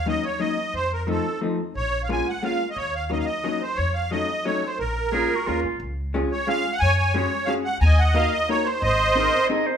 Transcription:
Already playing: D#2
0.06 F#3 A#3 C#4 D#4 D#5
0.24 C#5
0.39 F#3 A#3 C#4 D#4 D#5
0.74 F2 C5
0.93 A#4
1.07 F3 A3 C4 D#4 A4
1.41 F3 A3 C4 D#4
1.75 A#1 C#5
2.03 F5
2.09 G#3 A#3 C#4 F4 G#5
2.28 F#5
2.43 G#3 A#3 C#4 F4 F5
2.70 D#5
2.76 D#2 C#5
2.95 F5
3.10 F#3 A#3 C#4 D#4 D#5
3.19 F5
3.25 D#5
3.44 F#3 A#3 C#4 D#4
3.62 C5
3.75 F2 C#5
3.94 F5
4.11 F#3 A3 C#4 D#4 D#5
4.45 F#3 A3 C#4 D#4 C#5
4.66 C5
4.79 A#1 A#4
5.12 G#3 A#3 C#4 F4 G#4
5.36 F#4
5.46 D#2 G#3 A#3 C#4 F4
5.64 C#2
5.80 C#2
6.14 G#3 C#4 F4 G#4
6.31 C#5
6.47 G#3 C#4 F4 G#4 F5
6.73 F#5
6.80 F#2 C#5 G#5
6.98 G#5
7.14 G#3 C#4 F#4 G#4 C#5
7.46 G#3 C#4 F#4 G#4 F5
7.65 F#5
7.81 D#2 G#5 A#5
7.86 D#5
7.99 F#5
8.14 A#3 D#4 F#4 A#4 F5
8.32 D#5
8.49 A#3 D#4 F#4 A#4 C#5
8.64 C5
8.82 G#1 C5 D#5
9.15 C4 D#4 G#4 A#4
9.43 C5
9.48 C4 D#4 G#4 D#5
9.52 A#4
9.66 C5

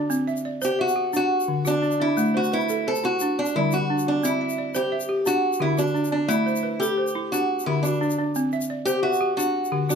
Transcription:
Already playing: D4 F#4
0.10 C4, shaker
0.28 E5, shaker
0.36 shaker
0.45 D5
0.62 G4 C5, shaker
0.79 F#4 E5
0.88 shaker
0.96 G4
1.13 D4 F#4, shaker
1.40 shaker
1.48 D3
1.65 D4 F#4, shaker
1.82 D4, shaker
1.91 shaker
2.00 D4 E4
2.17 A3, shaker
2.34 F#4 C5
2.44 shaker
2.52 E4 B4, shaker
2.60 shaker
2.69 A4, shaker
2.87 A4 C5
2.95 shaker
3.03 E4 F#4, shaker
3.20 D4, shaker
3.39 D4
3.45 shaker
3.56 D3 G3 E4
3.71 F#4, shaker
3.90 D4
3.98 shaker
4.07 D4
4.23 C4 E4, shaker
4.41 E5
4.49 shaker
4.58 D5
4.75 G4 C5, shaker
4.92 E5
5.00 shaker
5.09 G4
5.26 D4 F#4, shaker
5.53 shaker
5.60 D3 E4 G4
5.77 D4 F#4, shaker
5.94 D4, shaker
6.04 shaker
6.12 D4
6.28 A3 E4, shaker
6.46 C5, shaker
6.56 shaker
6.63 B4
6.80 G4 A4, shaker
6.98 C5
7.07 shaker
7.15 E4
7.32 D4 F#4, shaker
7.59 shaker
7.66 D3 E4 G4
7.83 D4 F#4, shaker
8.01 D4, shaker
8.10 shaker
8.18 D4
8.35 C4, shaker
8.52 E5, shaker
8.61 shaker
8.70 D5
8.85 G4 C5, shaker
9.03 F#4 E5
9.13 shaker
9.21 G4
9.37 D4 F#4, shaker
9.65 shaker
9.72 D3 G4
9.89 D4 F#4, shaker

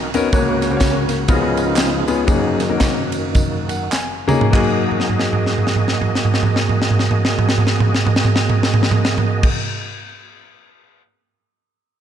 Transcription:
Already playing: B1 B2 D#4 F#4 A#4
0.14 B3 C#4 D#4 F#4 A#4, ride, tambourine
0.33 C#2 C#3 A#3 C#4 F#4 A#4 C#5, kick, ride, tambourine
0.62 snare, ride, tambourine
0.71 A#3 C#4 F#4 A#4 C5
0.77 C#5, snare
0.81 kick, clap, ride, tambourine
1.09 snare, ride, tambourine
1.28 C#2 C#3 F3 B3 C#4 D#4 F4 F#4 A#4, kick, ride, tambourine
1.34 G#4
1.57 ride, tambourine
1.76 B3 F4 G#4, snare, clap, ride, tambourine
2.07 B3 C#4 D#4 F4 G#4, ride, tambourine
2.21 F4
2.27 F#1 F#2 A#3 C#4 D#4 F#4 G#4, kick, ride, tambourine
2.57 F#2 D#3 A#3, snare, ride, tambourine
2.70 A#3 C#4 D#4 F#4 A#4
2.80 kick, snare, clap, ride, tambourine
3.12 ride, tambourine
3.35 kick, ride, tambourine
3.67 F#2 D#3 A#3 F#5, ride, tambourine
3.92 G#5, snare, clap, tambourine
4.28 A#3 C#4 D#4 F#4 G#4 A#5, mid tom, tambourine
4.41 floor tom
4.51 F#2 A#3 D#4 F#4 G#4 D#5, kick, clap, crash
4.55 G#4
4.91 floor tom
5.00 snare
5.09 floor tom
5.20 snare
5.33 floor tom
5.46 snare
5.58 floor tom
5.67 snare
5.76 floor tom
5.88 snare
6.02 floor tom
6.15 snare
6.25 floor tom
6.34 snare
6.43 floor tom
6.56 snare
6.69 floor tom
6.82 snare
6.91 floor tom
6.99 snare
7.11 floor tom
7.25 snare
7.39 floor tom
7.49 snare
7.58 floor tom
7.67 snare
7.80 floor tom
7.95 snare
8.07 floor tom
8.16 snare
8.25 floor tom
8.36 snare
8.50 floor tom
8.63 snare
8.74 floor tom
8.83 snare
8.91 floor tom
9.05 snare
9.18 floor tom
9.43 kick, crash

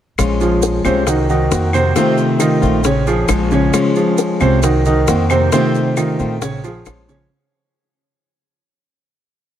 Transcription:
0.18 A#1 F3 G#3 C#4 F4, high bongo, claves, maracas
0.41 F3 F4 G#4, maracas
0.62 high bongo, maracas
0.84 C2 C3 G#3 C4 C#4 F4 C5, claves, maracas
1.07 D#3 D#4 F#4, muted steel-string acoustic guitar stroke, high bongo, maracas
1.29 D#3 D#4 F#4, maracas
1.50 F2 D#3 A#3 C4 F#4, high bongo, low bongo, maracas
1.73 C3 C4 C5, claves, maracas
1.96 C3 D#3 A3 C4 F4 C5, high bongo, maracas
2.18 maracas
2.40 D#3 D#4 F4, high bongo, claves, maracas
2.62 A#1 D#3 A3 C4 F4, high bongo, maracas
2.84 C#3 C#4 C#5, muted steel-string acoustic guitar stroke, high bongo, maracas
3.07 F3 F4 G#4, high bongo, maracas
3.28 A#1 F3 G#3 C#4 F4, high bongo, low bongo, claves, maracas
3.51 C#3 C#4 C#5, high bongo, maracas
3.73 F3 G#3 C#4 F4, high bongo, claves, maracas
3.96 F3 F4 G#4, maracas
4.18 high bongo, maracas
4.40 C2 C3 G#3 C4 C#4 F4 C5, claves, maracas
4.62 D#3 D#4 F#4, muted steel-string acoustic guitar stroke, high bongo, maracas
4.85 D#3 D#4 F#4, maracas
5.07 F2 D#3 A#3 C4 F#4, high bongo, low bongo, maracas
5.30 C3 C4 C5, claves, maracas
5.52 C3 D#3 A3 C4 F4 C5, high bongo, maracas
5.75 maracas
5.97 D#3 D#4 F4, high bongo, claves, maracas
6.19 A#1 D#3 A3 C4 F4, high bongo, maracas
6.42 C#3 C#4 C#5, muted steel-string acoustic guitar stroke, high bongo, maracas
6.64 F3 F4 G#4, high bongo, maracas
6.86 A#1 F3 G#3 C#4 F4, high bongo, low bongo, claves, maracas
7.08 C#3 C#4 C#5, high bongo, maracas

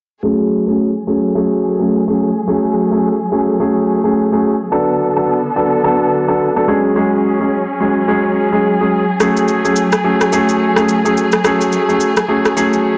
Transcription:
0.23 F#3 A3 C#4 G#4
0.67 F#3 A3 C#4 G#4
1.07 F#3 A3 C#4 G#4
1.35 F#3 A3 C#4 G#4
1.79 F#3 A3 C#4 G#4
2.07 F#3 A3 C#4 G#4
2.47 F#3 A3 C#4 G#4
2.92 F#3 A3 C#4 G#4
3.31 F#3 A3 C#4 G#4
3.60 F#3 A3 C#4 G#4
4.04 F#3 A3 C#4 G#4
4.32 F#3 A3 C#4 G#4
4.72 D3 F#3 B3 D4 A4
5.16 F#3 B3 D4 A4
5.56 F#3 B3 D4 A4
5.84 F#3 B3 D4 A4
6.28 F#3 B3 D4 A4
6.56 F#3 B3 D4 A4
6.68 F#3 G#3 C#4 G#4
6.96 F#3 G#3 C#4 G#4
7.40 F#3 G#3 C#4 G#4
7.80 F#3 G#3 C#4 G#4
8.08 F#3 G#3 C#4 G#4
8.52 F#3 G#3 C#4 G#4
8.80 F#3 G#3 C#4 G#4
9.20 F#3 A3 C#4 G#4, cross-stick, shaker
9.37 shaker
9.48 shaker
9.64 F#3 A3 C#4 G#4, shaker
9.76 shaker
9.92 cross-stick, shaker
10.04 F#3 A3 C#4 G#4
10.21 cross-stick, shaker
10.32 F#3 A3 C#4 G#4, shaker
10.49 shaker
10.76 F#3 A3 C#4 G#4, cross-stick, shaker
10.89 shaker
11.05 F#3 A3 C#4 G#4, shaker
11.17 shaker
11.32 cross-stick, shaker
11.44 F#3 A3 C#4 G#4, cross-stick, shaker
11.61 shaker
11.72 shaker
11.89 F#3 A3 C#4 G#4, shaker
12.00 shaker
12.17 cross-stick, shaker
12.28 F#3 A3 C#4 G#4
12.45 cross-stick, shaker
12.56 F#3 A3 C#4 G#4, shaker
12.73 shaker

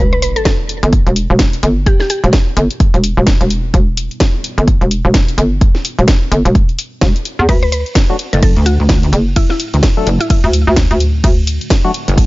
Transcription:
0.00 E1 G3 B3 E4 B4, sub drop
0.13 B4
0.22 B4, open hi-hat
0.36 A4, closed hi-hat
0.45 A4, kick, snare, closed hi-hat
0.69 open hi-hat
0.83 G1, closed hi-hat
0.93 kick, closed hi-hat
1.07 E1, closed hi-hat
1.16 open hi-hat
1.30 E1
1.39 kick, snare, closed hi-hat
1.53 closed hi-hat
1.63 G1, open hi-hat
1.86 G4, kick, closed hi-hat
2.00 G4, snare
2.10 G4, open hi-hat
2.24 E1, closed hi-hat
2.33 kick, snare, closed hi-hat
2.57 G1, open hi-hat
2.71 closed hi-hat
2.80 kick, closed hi-hat
2.94 E1, closed hi-hat
3.04 open hi-hat
3.17 E1
3.27 kick, snare, closed hi-hat
3.41 E1, closed hi-hat
3.50 open hi-hat
3.74 E1, kick, closed hi-hat
3.97 open hi-hat
4.11 closed hi-hat
4.20 kick, snare, closed hi-hat
4.44 open hi-hat
4.58 G1, closed hi-hat
4.68 kick, closed hi-hat
4.81 E1, closed hi-hat
4.91 open hi-hat
5.05 E1
5.14 kick, snare, closed hi-hat
5.28 closed hi-hat
5.38 G1, open hi-hat
5.61 kick, closed hi-hat
5.75 snare
5.85 open hi-hat
5.99 E1, closed hi-hat
6.08 kick, snare, closed hi-hat
6.32 G1, open hi-hat
6.45 E1, closed hi-hat
6.55 kick, closed hi-hat
6.69 closed hi-hat
6.79 open hi-hat
7.01 E1, kick, snare, closed hi-hat
7.16 closed hi-hat
7.25 open hi-hat
7.39 E2
7.49 D2 A3 D4 F#4 B4 D5, kick, closed hi-hat, ride
7.63 B4
7.72 B4, open hi-hat
7.86 closed hi-hat
7.95 kick, snare, closed hi-hat, ride
8.10 F#3 A3 D4 F#4
8.19 open hi-hat
8.33 F#1 A4, closed hi-hat
8.43 A4, kick, closed hi-hat, ride
8.56 D2, closed hi-hat
8.66 F#4, open hi-hat
8.80 D2
8.89 kick, snare, closed hi-hat, ride
9.03 closed hi-hat
9.13 F#1, open hi-hat
9.36 E4, kick, closed hi-hat, ride
9.50 E4, snare
9.60 open hi-hat
9.74 D2, closed hi-hat
9.83 kick, snare, closed hi-hat, ride
9.97 F#3 A3 D4 A4
10.07 F#1, open hi-hat
10.21 E4, closed hi-hat
10.30 E4, kick, closed hi-hat, ride
10.44 D2, closed hi-hat
10.53 open hi-hat
10.67 D2
10.76 kick, snare, closed hi-hat, ride
10.91 D2, closed hi-hat
11.00 open hi-hat
11.24 D2, kick, closed hi-hat, ride
11.47 open hi-hat
11.61 closed hi-hat
11.70 kick, snare, closed hi-hat, ride
11.85 F#3 A3 D4 F#4
11.94 open hi-hat
12.08 F#1, closed hi-hat
12.18 kick, closed hi-hat, ride

